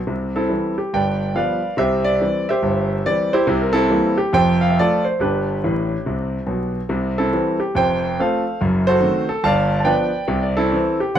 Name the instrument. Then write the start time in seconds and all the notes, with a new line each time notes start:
grand piano
0.07 C2 C3
0.36 C4 E4 A4
0.49 E3 G3 C4
0.78 G4
0.93 G1 G2 B4 D5 G5
1.35 F3 G3 B3 B4 D5 F5
1.77 C2 C3 G4 C5 E5
2.04 D5
2.21 E3 G3 C4
2.49 G4 C5 E5
2.62 G1 G2
3.06 E3 G3 C4 D5
3.33 E4 G4 C5
3.47 C2 C3
3.62 A#4
3.73 C4 E4 A4
3.90 E3 G3 A#3
4.17 G4
4.33 F1 F2 C5 G5
4.61 F5
4.70 E5
4.79 F3 A3 F4 A4 D5
5.05 C5
5.19 G1 G2 D4 G4 B4
5.64 A1 A2
6.06 C2 C3
6.47 B1 B2
6.89 C2 C3
7.18 C4 E4 A4
7.33 E3 G3 C4
7.60 G4
7.75 F1 F2 C5 G5
8.20 F3 A3 C4 A4 C5 F5
8.61 F#1 F#2
8.87 F#4 A4 C5
9.00 D#3 A3 C4
9.29 A4
9.44 G1 G2 D5 F5 A5
9.80 A5
9.84 F3 B3 D4 B4 D5 G5
10.28 C2 C3
10.43 D5
10.57 C4 E4 A4
10.72 E3 C4
11.00 G4
11.14 D1 D2 D3 F#5